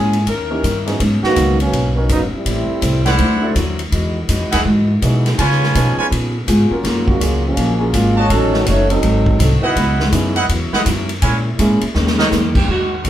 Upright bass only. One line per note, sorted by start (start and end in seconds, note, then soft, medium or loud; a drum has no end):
0.00 0.26 G#2 medium
0.26 0.62 D#2 medium
0.64 0.99 G2 medium
1.00 1.22 G#2 medium
1.22 muted upright bass stroke soft
1.36 1.72 C#2 medium
1.72 2.08 B1 medium
2.09 2.31 F#1 medium
2.32 muted upright bass stroke soft
2.45 2.68 A1 medium
2.69 muted upright bass stroke soft
2.82 3.18 C2 medium
3.19 3.54 D2 medium
3.55 3.91 D#2 medium
3.92 4.28 E2 medium
4.28 4.40 F#2 medium
4.40 4.53 E2 medium
4.53 4.64 D#2 medium
4.65 5.01 G#2 medium
5.02 5.37 B2 medium
5.38 5.74 C#3 medium
5.75 5.97 B2 medium
5.97 muted upright bass stroke soft
6.11 6.47 A#2 medium
6.48 6.70 G#2 medium
6.70 muted upright bass stroke soft
6.84 7.19 F#2 medium
7.21 7.56 C#2 medium
7.57 7.92 A#1 medium
7.93 8.29 G#1 medium
8.30 8.66 A1 medium
8.66 9.02 F#1 medium
9.02 9.38 G#1 medium
9.39 9.61 C2 loud
9.63 muted upright bass stroke soft
9.76 10.11 C#2 medium
10.12 10.48 F#2 medium
10.49 10.71 E2 medium
10.73 muted upright bass stroke soft
10.86 11.21 F#2 medium
11.22 11.58 A#2 medium
11.59 11.81 G#2 medium
11.82 muted upright bass stroke soft
11.95 12.30 D#2 medium
12.31 12.67 E2 loud
12.68 13.04 D#2 medium
13.04 13.10 A#1 medium